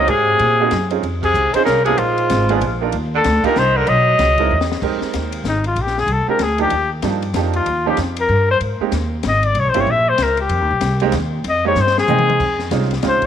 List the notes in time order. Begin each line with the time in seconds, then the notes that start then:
Already playing: D#5
0.07 G#2 C3 G#4, ride
0.39 A#2, ride
0.60 A#3 C4 D#4 F#4 G#4
0.71 F#2, snare, hi-hat pedal, ride
0.91 C4 C#4 D#4 F4 G#4, ride
1.03 F2, ride
1.22 C3 G#4, kick, crash
1.34 C#2, hi-hat pedal
1.53 D#3 C4 C#4 D#4 F4 G#4 C5, muted upright bass stroke, ride
1.65 C2 C#3 A#4, snare, hi-hat pedal
1.84 C3 A#3 B3 D4 F4 G#4 A#4, ride
1.98 A#1 G#2 F4, ride
2.18 ride
2.30 G#1, snare, hi-hat pedal, ride
2.49 A#3 B3 D4 F4 G#4, ride
2.61 A#1, ride
2.81 A#3 D4 D#4 F4 A#4
2.92 D#2, ride
3.15 D3 A4
3.24 D2, snare, hi-hat pedal, ride
3.44 D3 A#3 D4 D#4 F4 G4 A#4, muted upright bass stroke, kick, ride
3.56 C2 D#3 C5, snare, hi-hat pedal
3.77 D3 A#4
3.87 B1 F#3 D#5, ride
4.19 C#2, snare, hi-hat pedal, ride
4.38 G#3 C4 D#4 E4 A#4, kick, ride
4.51 E2
4.61 snare
4.72 snare
4.82 F2 G#3 C4 D#4 G4 A#4, kick, crash
5.01 muted upright bass stroke, snare
5.14 D#2, snare, hi-hat pedal, ride
5.32 ride
5.44 G#1, snare, hi-hat pedal
5.48 D#4
5.64 F4, ride
5.76 A#1, ride
5.82 G4
5.87 snare
5.98 G#4, snare
6.07 C2, ride
6.12 A4
6.27 G#3 C4 D4 F4 G4 A#4, muted upright bass stroke
6.39 D2, snare, hi-hat pedal, ride
6.43 G#4
6.58 F3 A#3 D4 D#4 G4, ride
6.70 D#2, ride
7.02 G2 F3 A#3 D4 D#4 G4, snare, hi-hat pedal, ride
7.22 ride
7.34 F2 F3 A#3 D4 D#4 G4, snare, hi-hat pedal, ride
7.53 F4, ride
7.66 D#2, ride
7.86 F3 A#3 C#4 D#4 G4
7.97 F2, snare, hi-hat pedal, ride
8.17 A#4, ride
8.29 G2
8.51 C5
8.60 G#2, ride
8.80 G#3 A#3 C4 D#4 G4, muted upright bass stroke
8.92 D#2, snare, hi-hat pedal, ride
9.23 G#1, snare, hi-hat pedal, ride
9.28 D#5
9.43 D5, ride
9.54 C2, ride
9.60 C#5
9.66 A#1 C5
9.74 G1 A#3 C4 C#4 E4 G4, ride
9.80 C#5
9.87 A#1 E5
10.09 C5
10.18 C#2, snare, hi-hat pedal, ride
10.23 A#4
10.37 G4, ride
10.49 F2, ride
10.61 D#2
10.71 C2
10.81 C2, snare, hi-hat pedal, ride
11.00 G#3 A#3 C4 D#4 G4, ride
11.12 D#2, snare, hi-hat pedal, ride
11.44 F2, ride
11.49 D#5
11.65 G#3 A#3 C4 D#4 G4 C#5
11.75 G2, snare, hi-hat pedal
11.81 C5
11.87 snare
11.98 G#4, snare
12.08 C3 G#3 A#3 C4 D#4 G5, hi-hat pedal, mid tom
12.19 mid tom
12.30 mid tom
12.40 F2, kick, crash
12.59 snare
12.71 C2 G#3 C4 C#4 D#4 F4, snare, hi-hat pedal, ride
12.82 snare
12.91 snare, ride
13.03 C#2 G#3 C4 C#4 D#4 F4, snare, hi-hat pedal, ride
13.08 C5
13.22 muted upright bass stroke, kick, ride